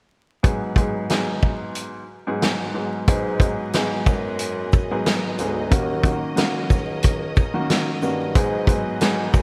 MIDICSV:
0, 0, Header, 1, 5, 480
1, 0, Start_track
1, 0, Tempo, 659341
1, 320, Time_signature, 4, 2, 24, 8
1, 6858, End_track
2, 0, Start_track
2, 0, Title_t, "String section"
2, 0, Program_c, 0, 48
2, 2235, Note_on_c, 0, 54, 75
2, 2236, Note_on_c, 0, 59, 73
2, 2236, Note_on_c, 0, 75, 88
2, 2237, Note_on_c, 0, 68, 74
2, 4139, Note_off_c, 0, 59, 0
2, 4139, Note_off_c, 0, 68, 0
2, 4163, Note_on_c, 0, 61, 71
2, 4163, Note_on_c, 0, 70, 76
2, 6062, Note_off_c, 0, 61, 0
2, 6062, Note_off_c, 0, 70, 0
2, 6074, Note_on_c, 0, 59, 74
2, 6074, Note_on_c, 0, 68, 72
2, 6858, Note_off_c, 0, 54, 0
2, 6858, Note_off_c, 0, 59, 0
2, 6858, Note_off_c, 0, 68, 0
2, 6858, Note_off_c, 0, 75, 0
2, 6858, End_track
3, 0, Start_track
3, 0, Title_t, "Upright piano"
3, 0, Program_c, 1, 0
3, 312, Note_on_c, 1, 44, 85
3, 313, Note_on_c, 1, 54, 80
3, 315, Note_on_c, 1, 59, 84
3, 316, Note_on_c, 1, 68, 103
3, 539, Note_off_c, 1, 44, 0
3, 539, Note_off_c, 1, 54, 0
3, 540, Note_off_c, 1, 59, 0
3, 541, Note_off_c, 1, 68, 0
3, 558, Note_on_c, 1, 44, 84
3, 559, Note_on_c, 1, 54, 83
3, 561, Note_on_c, 1, 59, 76
3, 563, Note_on_c, 1, 68, 95
3, 782, Note_off_c, 1, 44, 0
3, 782, Note_off_c, 1, 54, 0
3, 783, Note_off_c, 1, 59, 0
3, 784, Note_off_c, 1, 68, 0
3, 802, Note_on_c, 1, 44, 88
3, 804, Note_on_c, 1, 54, 78
3, 806, Note_on_c, 1, 59, 79
3, 807, Note_on_c, 1, 68, 100
3, 1469, Note_off_c, 1, 44, 0
3, 1470, Note_off_c, 1, 54, 0
3, 1471, Note_off_c, 1, 59, 0
3, 1472, Note_off_c, 1, 68, 0
3, 1653, Note_on_c, 1, 44, 95
3, 1655, Note_on_c, 1, 54, 80
3, 1656, Note_on_c, 1, 59, 70
3, 1658, Note_on_c, 1, 68, 99
3, 1974, Note_off_c, 1, 44, 0
3, 1975, Note_off_c, 1, 54, 0
3, 1976, Note_off_c, 1, 59, 0
3, 1977, Note_off_c, 1, 68, 0
3, 1994, Note_on_c, 1, 44, 77
3, 1996, Note_on_c, 1, 54, 66
3, 1997, Note_on_c, 1, 59, 70
3, 1998, Note_on_c, 1, 68, 78
3, 2219, Note_off_c, 1, 44, 0
3, 2220, Note_off_c, 1, 54, 0
3, 2221, Note_off_c, 1, 59, 0
3, 2222, Note_off_c, 1, 68, 0
3, 2243, Note_on_c, 1, 44, 97
3, 2244, Note_on_c, 1, 54, 83
3, 2245, Note_on_c, 1, 59, 85
3, 2246, Note_on_c, 1, 68, 111
3, 2463, Note_off_c, 1, 44, 0
3, 2465, Note_off_c, 1, 54, 0
3, 2465, Note_off_c, 1, 59, 0
3, 2466, Note_off_c, 1, 68, 0
3, 2474, Note_on_c, 1, 44, 85
3, 2475, Note_on_c, 1, 54, 85
3, 2476, Note_on_c, 1, 59, 75
3, 2479, Note_on_c, 1, 68, 95
3, 2699, Note_off_c, 1, 44, 0
3, 2700, Note_off_c, 1, 54, 0
3, 2701, Note_off_c, 1, 59, 0
3, 2702, Note_off_c, 1, 68, 0
3, 2725, Note_on_c, 1, 44, 96
3, 2727, Note_on_c, 1, 54, 90
3, 2728, Note_on_c, 1, 59, 88
3, 2730, Note_on_c, 1, 68, 109
3, 3390, Note_off_c, 1, 44, 0
3, 3391, Note_off_c, 1, 54, 0
3, 3392, Note_off_c, 1, 59, 0
3, 3393, Note_off_c, 1, 68, 0
3, 3575, Note_on_c, 1, 44, 87
3, 3577, Note_on_c, 1, 54, 92
3, 3578, Note_on_c, 1, 59, 87
3, 3579, Note_on_c, 1, 68, 100
3, 3895, Note_off_c, 1, 44, 0
3, 3896, Note_off_c, 1, 54, 0
3, 3896, Note_off_c, 1, 59, 0
3, 3897, Note_off_c, 1, 68, 0
3, 3927, Note_on_c, 1, 44, 82
3, 3930, Note_on_c, 1, 54, 76
3, 3930, Note_on_c, 1, 59, 73
3, 3932, Note_on_c, 1, 68, 89
3, 4146, Note_off_c, 1, 44, 0
3, 4147, Note_off_c, 1, 54, 0
3, 4148, Note_off_c, 1, 59, 0
3, 4149, Note_off_c, 1, 68, 0
3, 4154, Note_on_c, 1, 51, 95
3, 4155, Note_on_c, 1, 58, 88
3, 4157, Note_on_c, 1, 61, 84
3, 4159, Note_on_c, 1, 66, 102
3, 4380, Note_off_c, 1, 51, 0
3, 4380, Note_off_c, 1, 58, 0
3, 4381, Note_off_c, 1, 61, 0
3, 4382, Note_off_c, 1, 66, 0
3, 4397, Note_on_c, 1, 51, 88
3, 4399, Note_on_c, 1, 58, 83
3, 4401, Note_on_c, 1, 61, 80
3, 4402, Note_on_c, 1, 66, 103
3, 4618, Note_off_c, 1, 51, 0
3, 4620, Note_off_c, 1, 58, 0
3, 4622, Note_off_c, 1, 61, 0
3, 4623, Note_off_c, 1, 66, 0
3, 4629, Note_on_c, 1, 51, 91
3, 4631, Note_on_c, 1, 58, 85
3, 4633, Note_on_c, 1, 61, 89
3, 4634, Note_on_c, 1, 66, 106
3, 5303, Note_off_c, 1, 51, 0
3, 5303, Note_off_c, 1, 58, 0
3, 5305, Note_off_c, 1, 61, 0
3, 5305, Note_off_c, 1, 66, 0
3, 5487, Note_on_c, 1, 51, 96
3, 5488, Note_on_c, 1, 58, 85
3, 5489, Note_on_c, 1, 61, 80
3, 5491, Note_on_c, 1, 66, 100
3, 5811, Note_off_c, 1, 51, 0
3, 5812, Note_off_c, 1, 58, 0
3, 5812, Note_off_c, 1, 61, 0
3, 5813, Note_off_c, 1, 66, 0
3, 5838, Note_on_c, 1, 51, 85
3, 5840, Note_on_c, 1, 58, 69
3, 5843, Note_on_c, 1, 61, 73
3, 5843, Note_on_c, 1, 66, 88
3, 6062, Note_off_c, 1, 51, 0
3, 6063, Note_off_c, 1, 58, 0
3, 6064, Note_off_c, 1, 61, 0
3, 6064, Note_off_c, 1, 66, 0
3, 6083, Note_on_c, 1, 44, 95
3, 6083, Note_on_c, 1, 54, 83
3, 6085, Note_on_c, 1, 59, 87
3, 6087, Note_on_c, 1, 68, 110
3, 6303, Note_off_c, 1, 44, 0
3, 6303, Note_off_c, 1, 54, 0
3, 6305, Note_off_c, 1, 59, 0
3, 6306, Note_off_c, 1, 68, 0
3, 6314, Note_on_c, 1, 44, 84
3, 6314, Note_on_c, 1, 54, 84
3, 6316, Note_on_c, 1, 59, 77
3, 6318, Note_on_c, 1, 68, 95
3, 6539, Note_off_c, 1, 44, 0
3, 6540, Note_off_c, 1, 54, 0
3, 6541, Note_off_c, 1, 59, 0
3, 6541, Note_off_c, 1, 68, 0
3, 6564, Note_on_c, 1, 44, 102
3, 6564, Note_on_c, 1, 54, 89
3, 6567, Note_on_c, 1, 59, 88
3, 6568, Note_on_c, 1, 68, 108
3, 6858, Note_off_c, 1, 44, 0
3, 6858, Note_off_c, 1, 54, 0
3, 6858, Note_off_c, 1, 59, 0
3, 6858, Note_off_c, 1, 68, 0
3, 6858, End_track
4, 0, Start_track
4, 0, Title_t, "Bassoon"
4, 0, Program_c, 2, 70
4, 2241, Note_on_c, 2, 44, 109
4, 2572, Note_off_c, 2, 44, 0
4, 2958, Note_on_c, 2, 42, 99
4, 3650, Note_off_c, 2, 42, 0
4, 3921, Note_on_c, 2, 38, 95
4, 4134, Note_off_c, 2, 38, 0
4, 4162, Note_on_c, 2, 39, 123
4, 4492, Note_off_c, 2, 39, 0
4, 4878, Note_on_c, 2, 37, 90
4, 5570, Note_off_c, 2, 37, 0
4, 5840, Note_on_c, 2, 43, 100
4, 6053, Note_off_c, 2, 43, 0
4, 6081, Note_on_c, 2, 44, 113
4, 6412, Note_off_c, 2, 44, 0
4, 6799, Note_on_c, 2, 42, 100
4, 6858, Note_off_c, 2, 42, 0
4, 6858, End_track
5, 0, Start_track
5, 0, Title_t, "Drums"
5, 319, Note_on_c, 9, 42, 81
5, 321, Note_on_c, 9, 36, 116
5, 392, Note_off_c, 9, 42, 0
5, 393, Note_off_c, 9, 36, 0
5, 552, Note_on_c, 9, 36, 96
5, 563, Note_on_c, 9, 42, 55
5, 625, Note_off_c, 9, 36, 0
5, 636, Note_off_c, 9, 42, 0
5, 797, Note_on_c, 9, 42, 64
5, 803, Note_on_c, 9, 38, 106
5, 812, Note_on_c, 9, 40, 88
5, 870, Note_off_c, 9, 42, 0
5, 876, Note_off_c, 9, 38, 0
5, 884, Note_off_c, 9, 40, 0
5, 1038, Note_on_c, 9, 36, 87
5, 1111, Note_off_c, 9, 36, 0
5, 1274, Note_on_c, 9, 42, 87
5, 1347, Note_off_c, 9, 42, 0
5, 1763, Note_on_c, 9, 42, 72
5, 1764, Note_on_c, 9, 38, 114
5, 1773, Note_on_c, 9, 40, 90
5, 1836, Note_off_c, 9, 42, 0
5, 1837, Note_off_c, 9, 38, 0
5, 1845, Note_off_c, 9, 40, 0
5, 2239, Note_on_c, 9, 42, 89
5, 2241, Note_on_c, 9, 36, 127
5, 2312, Note_off_c, 9, 42, 0
5, 2314, Note_off_c, 9, 36, 0
5, 2473, Note_on_c, 9, 36, 102
5, 2484, Note_on_c, 9, 42, 57
5, 2484, Note_on_c, 9, 82, 58
5, 2546, Note_off_c, 9, 36, 0
5, 2557, Note_off_c, 9, 42, 0
5, 2557, Note_off_c, 9, 82, 0
5, 2718, Note_on_c, 9, 42, 68
5, 2724, Note_on_c, 9, 38, 114
5, 2732, Note_on_c, 9, 40, 94
5, 2791, Note_off_c, 9, 42, 0
5, 2797, Note_off_c, 9, 38, 0
5, 2805, Note_off_c, 9, 40, 0
5, 2958, Note_on_c, 9, 36, 93
5, 2960, Note_on_c, 9, 82, 62
5, 3031, Note_off_c, 9, 36, 0
5, 3033, Note_off_c, 9, 82, 0
5, 3195, Note_on_c, 9, 42, 94
5, 3268, Note_off_c, 9, 42, 0
5, 3440, Note_on_c, 9, 82, 55
5, 3444, Note_on_c, 9, 36, 92
5, 3513, Note_off_c, 9, 82, 0
5, 3517, Note_off_c, 9, 36, 0
5, 3684, Note_on_c, 9, 42, 75
5, 3686, Note_on_c, 9, 38, 123
5, 3694, Note_on_c, 9, 40, 98
5, 3757, Note_off_c, 9, 42, 0
5, 3758, Note_off_c, 9, 38, 0
5, 3767, Note_off_c, 9, 40, 0
5, 3921, Note_on_c, 9, 42, 49
5, 3921, Note_on_c, 9, 82, 50
5, 3994, Note_off_c, 9, 42, 0
5, 3994, Note_off_c, 9, 82, 0
5, 4161, Note_on_c, 9, 42, 91
5, 4162, Note_on_c, 9, 36, 120
5, 4233, Note_off_c, 9, 42, 0
5, 4234, Note_off_c, 9, 36, 0
5, 4393, Note_on_c, 9, 36, 102
5, 4404, Note_on_c, 9, 42, 56
5, 4404, Note_on_c, 9, 82, 57
5, 4466, Note_off_c, 9, 36, 0
5, 4477, Note_off_c, 9, 42, 0
5, 4477, Note_off_c, 9, 82, 0
5, 4637, Note_on_c, 9, 42, 67
5, 4643, Note_on_c, 9, 38, 114
5, 4651, Note_on_c, 9, 40, 93
5, 4710, Note_off_c, 9, 42, 0
5, 4716, Note_off_c, 9, 38, 0
5, 4724, Note_off_c, 9, 40, 0
5, 4879, Note_on_c, 9, 36, 92
5, 4881, Note_on_c, 9, 82, 61
5, 4952, Note_off_c, 9, 36, 0
5, 4954, Note_off_c, 9, 82, 0
5, 5115, Note_on_c, 9, 42, 89
5, 5127, Note_on_c, 9, 36, 94
5, 5188, Note_off_c, 9, 42, 0
5, 5200, Note_off_c, 9, 36, 0
5, 5360, Note_on_c, 9, 82, 55
5, 5365, Note_on_c, 9, 36, 92
5, 5433, Note_off_c, 9, 82, 0
5, 5437, Note_off_c, 9, 36, 0
5, 5605, Note_on_c, 9, 42, 75
5, 5606, Note_on_c, 9, 38, 127
5, 5614, Note_on_c, 9, 40, 100
5, 5677, Note_off_c, 9, 42, 0
5, 5679, Note_off_c, 9, 38, 0
5, 5687, Note_off_c, 9, 40, 0
5, 5841, Note_on_c, 9, 82, 49
5, 5914, Note_off_c, 9, 82, 0
5, 6080, Note_on_c, 9, 42, 89
5, 6081, Note_on_c, 9, 36, 126
5, 6153, Note_off_c, 9, 42, 0
5, 6154, Note_off_c, 9, 36, 0
5, 6313, Note_on_c, 9, 36, 97
5, 6324, Note_on_c, 9, 42, 58
5, 6324, Note_on_c, 9, 82, 58
5, 6386, Note_off_c, 9, 36, 0
5, 6396, Note_off_c, 9, 42, 0
5, 6396, Note_off_c, 9, 82, 0
5, 6557, Note_on_c, 9, 42, 66
5, 6563, Note_on_c, 9, 38, 115
5, 6571, Note_on_c, 9, 40, 91
5, 6630, Note_off_c, 9, 42, 0
5, 6635, Note_off_c, 9, 38, 0
5, 6644, Note_off_c, 9, 40, 0
5, 6798, Note_on_c, 9, 36, 96
5, 6800, Note_on_c, 9, 82, 64
5, 6858, Note_off_c, 9, 36, 0
5, 6858, Note_off_c, 9, 82, 0
5, 6858, End_track
0, 0, End_of_file